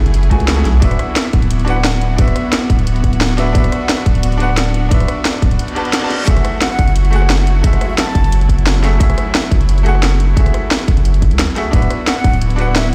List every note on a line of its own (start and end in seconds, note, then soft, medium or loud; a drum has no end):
0.00 0.30 F#1 medium
0.00 0.30 A3 medium
0.00 0.78 A3 medium
0.00 3.51 E4 medium
0.00 0.31 F#4 medium
0.00 0.31 G#4 medium
0.00 0.78 G#4 medium
0.00 0.84 E5 loud
0.00 0.84 F#5 loud
0.06 closed hi-hat soft
0.14 closed hi-hat medium
0.23 closed hi-hat soft
0.30 0.64 C#2 loud
0.30 0.54 A3 medium
0.30 0.55 F#4 medium
0.30 0.55 G#4 medium
0.30 0.56 G#5 medium
0.30 kick medium
0.30 closed hi-hat medium
0.40 closed hi-hat soft
0.48 snare loud
0.48 closed hi-hat medium
0.56 0.80 A3 medium
0.56 0.80 F#4 medium
0.56 0.81 G#4 medium
0.56 0.81 G#5 medium
0.65 0.81 B1 loud
0.65 snare soft
0.65 closed hi-hat medium
0.80 0.98 D1 loud
0.80 6.24 B3 medium
0.80 1.63 D4 medium
0.80 1.65 F#4 medium
0.80 6.24 F#4 medium
0.80 1.66 B4 medium
0.80 kick loud
0.80 closed hi-hat medium
0.85 1.67 E5 medium
0.91 cross-stick soft
0.91 closed hi-hat soft
0.99 cross-stick medium
0.99 closed hi-hat medium
1.16 snare loud
1.16 closed hi-hat medium
1.25 cross-stick soft
1.33 2.17 D1 medium
1.33 kick loud
1.33 closed hi-hat medium
1.42 closed hi-hat soft
1.51 closed hi-hat medium
1.59 closed hi-hat soft
1.65 2.15 D4 medium
1.65 2.16 F#4 medium
1.65 2.17 B4 medium
1.65 closed hi-hat medium
1.70 2.18 F#5 loud
1.76 cross-stick soft
1.85 snare loud
1.85 closed hi-hat medium
2.01 closed hi-hat medium
2.16 2.34 D1 loud
2.16 3.35 D4 medium
2.16 3.36 F#4 medium
2.16 3.37 B4 medium
2.16 kick loud
2.16 closed hi-hat medium
2.22 3.38 E5 medium
2.28 cross-stick soft
2.28 closed hi-hat soft
2.36 cross-stick medium
2.36 closed hi-hat medium
2.53 snare loud
2.53 closed hi-hat medium
2.62 cross-stick soft
2.70 3.54 D1 medium
2.70 kick loud
2.70 closed hi-hat medium
2.79 closed hi-hat soft
2.87 closed hi-hat medium
2.96 closed hi-hat soft
3.04 kick medium
3.04 closed hi-hat medium
3.13 closed hi-hat soft
3.21 snare loud
3.21 closed hi-hat medium
3.37 3.51 D4 medium
3.37 3.53 F#4 medium
3.37 3.53 B4 medium
3.37 3.54 E5 medium
3.37 snare soft
3.37 closed hi-hat medium
3.53 3.70 D1 loud
3.53 4.36 D4 medium
3.53 6.25 D4 medium
3.53 4.38 F#4 medium
3.53 4.39 B4 medium
3.53 kick loud
3.53 closed hi-hat loud
3.58 4.40 E5 loud
3.64 cross-stick soft
3.64 closed hi-hat soft
3.72 cross-stick medium
3.72 closed hi-hat medium
3.89 snare loud
3.89 closed hi-hat medium
3.98 cross-stick soft
4.06 4.90 D1 medium
4.06 kick loud
4.06 closed hi-hat medium
4.15 closed hi-hat soft
4.23 closed hi-hat loud
4.32 closed hi-hat soft
4.38 4.87 D4 medium
4.38 4.89 F#4 medium
4.38 4.90 B4 medium
4.38 closed hi-hat medium
4.43 4.91 F#5 loud
4.49 cross-stick soft
4.57 snare loud
4.57 closed hi-hat medium
4.74 closed hi-hat medium
4.89 5.07 D1 medium
4.89 5.74 D4 medium
4.89 5.74 F#4 medium
4.89 5.76 B4 medium
4.89 kick loud
4.89 closed hi-hat loud
4.94 5.76 E5 medium
5.00 cross-stick soft
5.00 closed hi-hat soft
5.08 cross-stick medium
5.08 closed hi-hat medium
5.25 snare loud
5.25 closed hi-hat loud
5.34 cross-stick soft
5.42 5.59 D1 medium
5.42 kick loud
5.42 closed hi-hat medium
5.51 closed hi-hat soft
5.59 closed hi-hat loud
5.59 reverse cymbal medium
5.68 closed hi-hat soft
5.75 6.00 D4 medium
5.75 6.00 F#4 medium
5.75 6.01 B4 medium
5.75 6.01 A5 medium
5.75 closed hi-hat medium
5.85 closed hi-hat soft
5.93 snare loud
5.93 closed hi-hat loud
6.01 6.25 D4 medium
6.01 6.25 F#4 medium
6.01 6.26 B4 medium
6.01 6.27 A5 medium
6.11 snare soft
6.11 closed hi-hat medium
6.25 6.43 F#1 loud
6.25 11.69 F#3 medium
6.25 7.09 A3 medium
6.25 11.69 E4 medium
6.25 7.11 F#4 medium
6.25 8.98 F#4 medium
6.25 7.11 G#4 medium
6.25 kick loud
6.25 closed hi-hat loud
6.30 7.12 E5 loud
6.37 cross-stick soft
6.37 closed hi-hat soft
6.45 cross-stick medium
6.45 closed hi-hat medium
6.62 6.69 F#5 medium
6.62 snare loud
6.62 closed hi-hat loud
6.71 6.91 F#5 medium
6.71 cross-stick soft
6.79 7.63 F#1 medium
6.79 kick loud
6.79 closed hi-hat medium
6.88 closed hi-hat soft
6.96 closed hi-hat loud
7.05 closed hi-hat soft
7.10 7.60 A3 medium
7.10 7.62 F#4 medium
7.10 7.63 G#4 medium
7.10 closed hi-hat medium
7.16 7.64 F#5 loud
7.22 cross-stick soft
7.30 snare loud
7.30 closed hi-hat loud
7.47 closed hi-hat medium
7.62 7.79 F#1 loud
7.62 8.82 G#3 medium
7.62 8.80 A3 medium
7.62 8.81 F#4 medium
7.62 kick loud
7.62 closed hi-hat medium
7.67 8.83 E5 medium
7.73 cross-stick soft
7.73 closed hi-hat soft
7.81 7.87 E5 medium
7.81 cross-stick medium
7.81 closed hi-hat medium
7.90 7.95 E5 medium
7.98 8.46 A5 loud
7.98 snare loud
7.98 closed hi-hat loud
8.07 cross-stick soft
8.15 8.99 F#1 medium
8.15 kick loud
8.15 closed hi-hat medium
8.24 closed hi-hat soft
8.32 closed hi-hat medium
8.41 closed hi-hat soft
8.49 kick medium
8.49 closed hi-hat medium
8.58 closed hi-hat soft
8.67 snare loud
8.67 closed hi-hat medium
8.82 8.96 A3 medium
8.82 8.98 F#4 medium
8.82 8.99 G#4 medium
8.82 8.99 E5 medium
8.82 snare soft
8.82 closed hi-hat medium
8.98 9.16 F#1 loud
8.98 9.82 A3 medium
8.98 9.83 F#4 medium
8.98 9.84 G#4 medium
8.98 kick loud
8.98 closed hi-hat medium
9.03 9.85 E5 loud
9.10 cross-stick soft
9.10 closed hi-hat soft
9.18 cross-stick medium
9.18 closed hi-hat medium
9.35 snare loud
9.35 closed hi-hat medium
9.44 cross-stick soft
9.51 10.35 F#1 medium
9.51 kick loud
9.51 closed hi-hat medium
9.61 closed hi-hat soft
9.69 closed hi-hat medium
9.78 closed hi-hat soft
9.83 10.33 A3 medium
9.83 10.35 F#4 medium
9.83 10.35 G#4 medium
9.83 closed hi-hat medium
9.89 10.36 F#5 loud
9.95 cross-stick soft
10.03 snare loud
10.03 closed hi-hat medium
10.20 closed hi-hat medium
10.34 10.52 F#1 loud
10.34 11.53 A3 medium
10.34 11.54 F#4 medium
10.34 11.55 G#4 medium
10.34 kick loud
10.34 closed hi-hat medium
10.40 11.56 E5 medium
10.46 cross-stick soft
10.46 closed hi-hat soft
10.54 cross-stick medium
10.54 closed hi-hat medium
10.71 snare loud
10.71 closed hi-hat medium
10.80 cross-stick soft
10.88 11.32 F#1 medium
10.88 kick loud
10.88 closed hi-hat medium
10.97 closed hi-hat soft
11.05 closed hi-hat medium
11.14 closed hi-hat soft
11.22 kick medium
11.22 closed hi-hat medium
11.31 11.46 C#2 medium
11.31 closed hi-hat soft
11.39 snare loud
11.39 closed hi-hat medium
11.55 11.71 A3 medium
11.55 11.71 F#4 medium
11.55 11.72 G#4 medium
11.55 11.72 E5 medium
11.55 snare soft
11.55 closed hi-hat medium
11.71 11.89 D1 loud
11.71 12.95 B3 medium
11.71 12.54 D4 medium
11.71 12.95 E4 medium
11.71 12.56 F#4 medium
11.71 12.95 F#4 medium
11.71 12.57 B4 medium
11.71 kick loud
11.71 closed hi-hat medium
11.76 12.58 E5 loud
11.82 cross-stick soft
11.82 closed hi-hat soft
11.90 cross-stick medium
11.90 closed hi-hat medium
12.07 12.14 F#5 medium
12.07 snare loud
12.07 closed hi-hat medium
12.16 12.36 F#5 medium
12.16 cross-stick soft
12.24 12.95 D1 medium
12.24 kick loud
12.24 closed hi-hat medium
12.33 closed hi-hat soft
12.42 closed hi-hat medium
12.50 closed hi-hat soft
12.56 12.95 D4 medium
12.56 12.95 F#4 medium
12.56 12.95 B4 medium
12.56 closed hi-hat medium
12.61 12.95 F#5 loud
12.67 cross-stick soft
12.75 12.91 E5 medium
12.75 snare loud
12.75 closed hi-hat medium